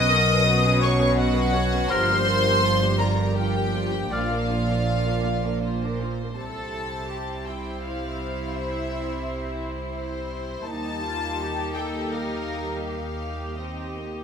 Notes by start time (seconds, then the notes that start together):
Already playing: B1 B2 F#3 C#4 B4 D#5 D#6
0.09 B3 F#4 A#4
0.30 C#4 B4
0.45 B3 F#4 B4
0.65 C#4 B4
0.80 B3 F#4 C#5 C#6
0.99 C#4 B4
1.15 B3 F#4 D#5 F#5
1.35 C#4 B4
1.53 B3 F#4 C#5
1.73 C#4 B4
1.90 G1 G2 F3 G3 D4 F4 A#4 C5 C6 F6
2.09 A#3 G4
2.27 G3 F4 A#4
2.46 A#3 G4
2.63 G3 F4 C5
2.83 A#3 G4
2.98 G3 F4 A#4 D5 A#5
3.19 A#3 G4
3.35 F3 G3 D4 F4 G4 A#4 G5
3.55 A#3 G4
3.74 G3 F4
3.92 A#3 G4
4.11 A#1 A#2 F3 A#3 D4 F4 D5 F5 F6
4.31 D4 A#4
4.49 A#3 F4
4.69 D4 A#4
4.88 A#3 F4
5.06 D4 A#4
5.25 A#3 F4
5.44 D4 A#4
5.61 A#3 F4 C5
5.83 D4 A#4
6.02 A#3 F4
6.21 D4 A#4
6.36 C2 G3 C4 E4 A4 C5 A5
7.11 G4
7.47 E4 G5
7.82 F5
8.52 E5
9.95 C5
10.66 D#2 G3 A#3 D#4 G4 A5
11.06 F4
11.40 G4
11.75 A4 G5
12.13 A#4 F5
12.85 G4 F5
13.59 C4 D#4 G4 D#5
13.97 A#3